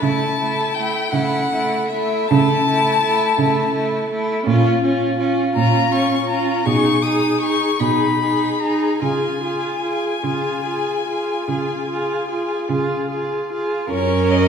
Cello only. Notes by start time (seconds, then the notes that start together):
0.02 C#3
1.13 C#3
2.30 C#3
3.38 C#3
4.47 A#2
5.56 A#2
6.67 B2
7.80 B2
9.01 C#3
10.24 C#3
11.48 C#3
12.69 C#3
13.91 F#2